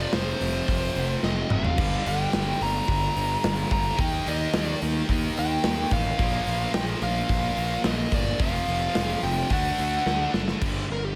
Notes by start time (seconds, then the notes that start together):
Already playing: F2 C3 F3 D5
0.13 F1 C5, snare, open hi-hat
0.41 F1, open hi-hat
0.68 F1, kick, open hi-hat
0.96 F1, open hi-hat
1.23 F1 D#5, snare
1.50 F1 F5, mid tom
1.65 floor tom
1.77 G1 G2 D3 G3, kick, crash
2.06 G1 G5, open hi-hat
2.33 G1, snare, open hi-hat
2.61 G1 A#5, open hi-hat
2.88 G1, kick, open hi-hat
3.16 G1, open hi-hat
3.44 G1, snare, open hi-hat
3.71 G1 A#5, kick, open hi-hat
3.97 D#2 D#3 A#3 D#4 G5, kick, open hi-hat
4.27 D#2 D#5, open hi-hat
4.53 D#2, snare, open hi-hat
4.65 D5
4.82 D#2, open hi-hat
5.09 D#2, kick, open hi-hat
5.37 D#2 G5, open hi-hat
5.64 D#2, snare, open hi-hat
5.91 A1 F5, kick, open hi-hat
6.18 A#1 A#2 F3 A#3, kick, open hi-hat
6.47 A#1, open hi-hat
6.74 A#1 G5, snare, open hi-hat
7.02 A#1 F5, open hi-hat
7.29 A#1, kick, open hi-hat
7.57 A#1, open hi-hat
7.84 A#1 D#5, snare, open hi-hat
8.12 G1 D5, kick, open hi-hat
8.39 F1 F2 C3 F3 F5, kick, open hi-hat
8.68 F1, open hi-hat
8.95 F1, snare, open hi-hat
9.23 F1 G5, open hi-hat
9.50 D2 D3 A3 D4 F#5, kick, open hi-hat
9.78 D2, open hi-hat
10.06 D2, snare
10.34 F#1, snare
10.48 snare
10.61 G1 G2 D3 G3, kick, crash
10.90 G1 A#4
11.05 G4